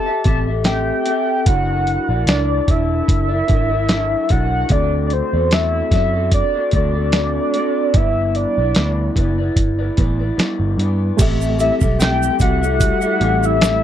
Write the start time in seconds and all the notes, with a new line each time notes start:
Already playing: A5
0.06 G4 A4 E5
0.24 A1 C4 G4 A4 E5 A5, kick, closed hi-hat
0.47 G4 A4 E5
0.64 A3 C4 G4 A4 E5 G5, snare, closed hi-hat
1.05 C4 G4 A4 E5, closed hi-hat
1.46 F#1 F#3 D4 E4 A#4 D5 F#5, kick, closed hi-hat
1.87 closed hi-hat
2.09 A#1 A#4 D5
2.13 E4
2.26 C#2 F#3 D4 E4 A#4 D5, snare, closed hi-hat
2.68 E1 D4 E4 A#4 D5 E5, kick, closed hi-hat
3.08 F#1, kick, closed hi-hat
3.28 E4 A#4 D5
3.47 G#1 D4 E4 A#4 D5, kick, closed hi-hat
3.70 E4 A#4 D5
3.89 F#3 D4 E4 A#4 D5, snare, closed hi-hat
4.28 B1 D4 E4 A#4 D5 F#5, kick, closed hi-hat
4.69 D2 D3 A3 C4 F#4 A4 D5, kick, closed hi-hat
5.07 D5, closed hi-hat
5.13 C5
5.33 E2 C4 F#4 A4 D5
5.51 D3 A3 C4 F#4 A4 D5 E5, snare, closed hi-hat
5.91 F#2 C4 F#4 A4 E5, kick, snare, closed hi-hat
5.95 D5
6.13 C4 F#4 A4 D5
6.31 D5, kick, closed hi-hat
6.54 C4 F#4 A4 D5
6.71 D2 C4 F#4 A4 D5, kick, closed hi-hat
6.94 C4 F#4 A4 D5
7.12 D3 A3 C4 F#4 A4 D5, snare, closed hi-hat
7.54 C4 F#4 A4 D5, closed hi-hat
7.94 G1 G3 B3 E4 B4 D5 E5, kick, closed hi-hat
8.35 D5, closed hi-hat
8.58 B1 E4 B4 D5
8.75 D2 G3 B3 E4 B4 D5, snare, closed hi-hat
9.15 F#1 B3 E4 B4 D5, kick, closed hi-hat
9.38 E4 B4 D5
9.56 G1, kick, closed hi-hat
9.79 E4 B4 D5
9.97 A1 B3 E4 B4 D5, kick, closed hi-hat
10.19 E4 B4 D5
10.37 G3 B3 E4 B4 D5, muted picked electric bass stroke, snare, closed hi-hat
10.60 G1
10.78 G2 B3 E4 B4 D5, closed hi-hat
11.17 A1 G3 A3 C4 E4 G4 A4 E5, kick, closed hi-hat, crash, shaker
11.22 E5
11.41 shaker
11.56 C4 G4 A4 E5, closed hi-hat, shaker
11.79 B1 G4 A4 E5, kick, shaker
11.99 A3 C4 G4 A4 E5 G5, snare, closed hi-hat, shaker
12.23 shaker
12.38 C2 C4 G4 A4 E5 F#5, kick, closed hi-hat, shaker
12.61 G4 A4 E5, shaker
12.80 kick, closed hi-hat, shaker
13.01 G4 A4 E5, shaker
13.20 A1 C4 G4 A4 E5, closed hi-hat
13.43 E5, shaker
13.60 A3 C4 G4 A4 E5, snare, closed hi-hat, shaker